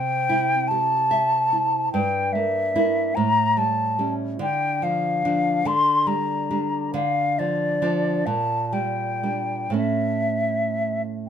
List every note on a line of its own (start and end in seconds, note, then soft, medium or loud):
0.00 1.88 C3 medium
0.00 0.53 C4 soft
0.00 0.70 G5 medium
0.29 0.94 E4 medium
0.68 1.35 G4 soft
0.68 1.92 A5 medium
1.11 1.76 E5 medium
1.53 1.93 E4 soft
1.93 3.13 G2 medium
1.93 2.34 G5 medium
2.33 2.74 A#3 soft
2.33 3.17 E5 medium
2.76 3.12 A#3 soft
2.76 3.12 E4 medium
3.15 4.37 A2 medium
3.15 3.60 A#5 medium
3.57 3.98 G3 soft
3.57 4.14 A5 medium
3.99 4.37 G3 soft
3.99 4.37 C#4 soft
4.39 5.63 D3 medium
4.39 4.85 G5 medium
4.82 5.24 F3 soft
4.82 5.68 F5 medium
5.25 5.63 F3 medium
5.25 5.63 D4 medium
5.65 6.90 D3 medium
5.65 6.09 C6 medium
6.07 6.49 G3 medium
6.07 6.94 A#5 medium
6.51 6.91 G3 soft
6.51 6.91 D4 soft
6.94 8.22 D3 medium
6.94 7.40 F5 medium
7.39 7.81 F3 soft
7.39 8.28 D5 medium
7.82 8.23 F3 medium
7.82 8.23 D4 medium
8.26 9.70 A#2 medium
8.26 8.75 A5 medium
8.72 9.22 G3 soft
8.72 9.75 G5 medium
9.23 9.71 G3 soft
9.23 9.72 D4 soft
9.70 11.29 A2 medium
9.70 11.29 A3 soft
9.70 11.29 C#4 soft
9.76 11.02 E5 medium